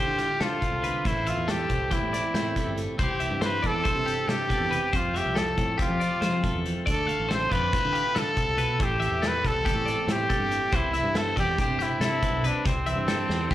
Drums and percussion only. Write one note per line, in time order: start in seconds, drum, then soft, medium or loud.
0.18 snare soft
0.18 closed hi-hat medium
0.41 snare loud
0.41 closed hi-hat medium
0.62 kick medium
0.62 closed hi-hat medium
0.84 closed hi-hat medium
1.05 kick loud
1.05 closed hi-hat medium
1.27 closed hi-hat medium
1.48 snare loud
1.48 closed hi-hat medium
1.70 kick medium
1.70 closed hi-hat medium
1.91 kick medium
1.91 closed hi-hat medium
2.14 snare soft
2.14 closed hi-hat medium
2.35 snare loud
2.35 closed hi-hat medium
2.56 kick medium
2.56 snare soft
2.56 closed hi-hat medium
2.77 closed hi-hat medium
2.99 kick loud
2.99 closed hi-hat medium
3.20 closed hi-hat medium
3.42 snare loud
3.42 closed hi-hat medium
3.64 kick medium
3.64 closed hi-hat soft
3.85 kick loud
3.85 closed hi-hat medium
4.08 closed hi-hat medium
4.29 snare loud
4.29 closed hi-hat medium
4.50 kick medium
4.50 closed hi-hat medium
4.72 closed hi-hat medium
4.93 kick loud
4.93 closed hi-hat medium
5.16 snare soft
5.16 closed hi-hat medium
5.36 snare loud
5.36 closed hi-hat medium
5.58 kick medium
5.58 closed hi-hat medium
5.79 kick loud
5.79 closed hi-hat medium
6.01 closed hi-hat medium
6.22 snare loud
6.22 closed hi-hat medium
6.44 kick medium
6.44 closed hi-hat medium
6.66 closed hi-hat medium
6.87 kick loud
6.87 closed hi-hat medium
7.09 closed hi-hat medium
7.31 snare loud
7.31 closed hi-hat medium
7.52 kick medium
7.52 closed hi-hat medium
7.73 kick loud
7.73 snare soft
7.73 closed hi-hat medium
7.95 closed hi-hat medium
8.16 snare loud
8.16 closed hi-hat medium
8.37 kick medium
8.37 closed hi-hat medium
8.58 closed hi-hat medium
8.80 kick loud
8.80 closed hi-hat medium
9.02 closed hi-hat medium
9.23 snare loud
9.23 closed hi-hat medium
9.45 kick medium
9.45 snare soft
9.45 closed hi-hat medium
9.66 kick loud
9.66 closed hi-hat medium
9.88 snare soft
9.88 closed hi-hat medium
10.08 snare loud
10.08 closed hi-hat medium
10.30 kick medium
10.30 closed hi-hat medium
10.51 closed hi-hat medium
10.72 kick loud
10.72 closed hi-hat medium
10.94 snare soft
10.94 closed hi-hat medium
11.15 snare loud
11.15 closed hi-hat medium
11.37 kick medium
11.37 snare soft
11.37 closed hi-hat medium
11.58 kick loud
11.58 snare soft
11.58 closed hi-hat medium
11.80 snare soft
11.80 closed hi-hat medium
12.01 snare loud
12.01 closed hi-hat medium
12.23 kick medium
12.23 closed hi-hat medium
12.44 closed hi-hat medium
12.66 kick loud
12.66 closed hi-hat medium
12.86 closed hi-hat medium
13.08 snare loud
13.08 closed hi-hat medium
13.30 snare medium
13.51 kick loud
13.51 snare medium